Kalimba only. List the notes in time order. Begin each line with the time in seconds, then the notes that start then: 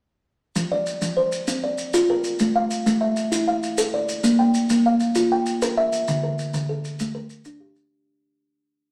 0.56 F3
0.72 D5
1.02 F3
1.17 C5
1.48 C4
1.64 D5
1.94 F4
2.10 A#4
2.40 A3
2.56 F5
2.86 A3
3.01 E5
3.32 E4
3.48 F5
3.78 A4
3.94 D5
4.24 A#3
4.39 G5
4.70 A#3
4.86 F5
5.16 F4
5.32 G5
5.62 A#4
5.77 E5
6.08 D3
6.23 A#4
6.54 D3
6.69 A4
7.00 A3
7.15 A#4
7.46 D4
7.60 G4